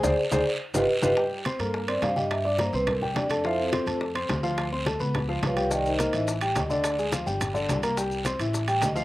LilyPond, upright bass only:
\new Staff \with { instrumentName = "Upright bass" } { \clef bass \time 4/4 \key c \minor \tempo 4 = 212 d,8 r8 d,8 r4 g,,8 r8 g,,8 | r4. g,4. g,4~ | g,4. c,4. f,4~ | f,4. f,4. d,4~ |
d,4. des,4. c,4~ | c,4. a,,4. d,4~ | d,4. g,,4. c,4~ | c,4. a,,4. d,4 | }